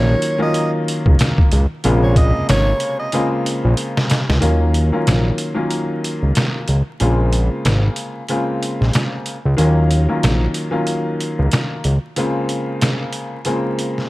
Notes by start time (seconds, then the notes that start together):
Already playing: A#1 D#3 F#3 A#3 C#4 F4 C#5
0.22 closed hi-hat
0.38 D#3 F#3 A#3 C#4 F4
0.42 D#5
0.54 closed hi-hat
0.88 closed hi-hat
1.06 C#2, kick
1.19 snare, closed hi-hat
1.38 kick
1.52 C#2, closed hi-hat
1.84 A#1 C3 C#3 G#3 A#3 F4, closed hi-hat
2.03 C#5
2.16 D#5, kick, closed hi-hat
2.49 G#1 C#5, snare, closed hi-hat
2.80 closed hi-hat
2.99 D#5
3.12 C#3 G#3 A#3 C4 F4, closed hi-hat
3.46 closed hi-hat
3.65 A#1
3.77 closed hi-hat
3.97 snare
4.10 snare, closed hi-hat
4.29 C#2, snare
4.40 D#2 D#3 F#3 A#3 C#4 F4, closed hi-hat
4.74 closed hi-hat
4.92 D#3 F#3 A#3 C#4 F4
5.07 A#1, snare, closed hi-hat
5.38 closed hi-hat
5.54 D#3 F#3 A#3 C#4 F4
5.71 closed hi-hat
6.04 closed hi-hat
6.23 C#2
6.35 snare, closed hi-hat
6.68 C#2, closed hi-hat
7.00 A#1 C#3 G#3 A#3 C4 F4, closed hi-hat
7.33 closed hi-hat
7.65 G#1, snare, closed hi-hat
7.96 closed hi-hat
8.29 C#3 G#3 A#3 C4 F4, closed hi-hat
8.63 closed hi-hat
8.81 A#1, snare
8.93 snare, closed hi-hat
9.26 closed hi-hat
9.45 C#2
9.57 D#2 D#3 F#3 A#3 C#4 F4, closed hi-hat
9.91 closed hi-hat
10.08 D#3 F#3 A#3 C#4 F4
10.23 A#1, snare, closed hi-hat
10.54 closed hi-hat
10.71 D#3 F#3 A#3 C#4 F4
10.87 closed hi-hat
11.20 closed hi-hat
11.39 C#2
11.52 snare, closed hi-hat
11.84 C#2, closed hi-hat
12.16 C#3 G#3 A#3 C4 F4, closed hi-hat
12.49 closed hi-hat
12.81 snare, closed hi-hat
13.13 closed hi-hat
13.45 C#3 G#3 A#3 C4 F4, closed hi-hat
13.79 closed hi-hat
13.98 snare